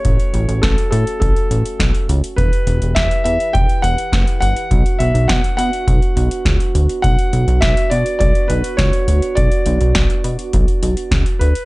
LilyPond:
<<
  \new Staff \with { instrumentName = "Grand piano" } { \time 4/4 \key b \minor \tempo 4 = 103 cis''4 a'8 a'8 a'4. r8 | b'4 e''8 e''8 g''8 fis''4 fis''8~ | fis''8 e''8 fis''8 fis''2 r8 | fis''4 e''8 d''8 d''8 b'8 cis''4 |
d''2.~ d''8 b'8 | }
  \new Staff \with { instrumentName = "French horn section" } { \time 4/4 \key b \minor <a cis' fis'>1 | <e e' g' b'>1 | <b d' fis'>1~ | <b d' fis'>1~ |
<b d' fis'>1 | }
  \new Staff \with { instrumentName = "Analog synth bass" } { \clef bass \time 4/4 \key b \minor a,,16 r16 a,,16 a,,16 a,,16 r16 a,16 r16 a,,16 r16 a,,16 r16 b,,16 r16 cis,16 r16 | e,,16 r16 e,,16 e,,16 e,,16 r16 e,16 r16 e,,16 r16 e,,16 r16 fis,,16 r16 g,,16 r16 | b,,16 r16 b,,16 b,,16 b,,16 r16 b,16 r16 b,,16 r16 b,,16 r16 cis,16 r16 d,16 r16 | b,,16 r16 b,,16 b,,16 b,,16 r16 b,16 r16 b,,16 r16 b,,16 r16 cis,16 r16 d,16 r16 |
b,,16 r16 b,,16 b,,16 b,,16 r16 b,16 r16 b,,16 r16 b,,16 r16 cis,16 r16 d,16 r16 | }
  \new DrumStaff \with { instrumentName = "Drums" } \drummode { \time 4/4 <hh bd>16 hh16 hh16 hh16 <hh bd sn>16 hh16 hh16 hh16 <hh bd>16 hh16 hh16 hh16 <hh bd sn>16 hh16 hh16 hh16 | <hh bd>16 hh16 hh16 hh16 <hh bd sn>16 hh16 hh16 hh16 <hh bd>16 hh16 hh16 hh16 <hh bd sn>16 hh16 hh16 hh16 | <hh bd>16 hh16 hh16 hh16 <hh bd sn>16 hh16 hh16 hh16 <hh bd>16 hh16 hh16 hh16 <hh bd sn>16 hh16 hh16 hh16 | <hh bd>16 hh16 hh16 hh16 <hh bd sn>16 hh16 hh16 hh16 <hh bd>16 hh16 hh16 hh16 <hh bd sn>16 hh16 hh16 hh16 |
<hh bd>16 hh16 hh16 hh16 <hh bd sn>16 hh16 hh16 hh16 <hh bd>16 hh16 hh16 hh16 <hh bd sn>16 hh16 hh16 hh16 | }
>>